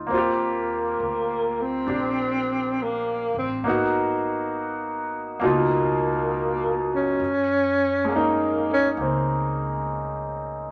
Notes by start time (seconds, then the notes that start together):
Already playing: C4 D#4 F4 G4
0.07 D#2 A#3 C4
0.14 A#3 F4 G4
1.00 D2
1.62 C4
1.87 A#1 D4 G4
2.83 A#3
3.34 A1 C4
3.63 G#1 A#3 B3
3.68 D#4 F#4
5.40 C#2 B2 A#3 D#4
5.45 F4
5.49 A#3
6.95 C#4
7.20 F#2
8.05 G#3 A#3
8.12 C#4 D#4
8.17 A#3
8.73 C#4
8.97 C#2 A#3 C4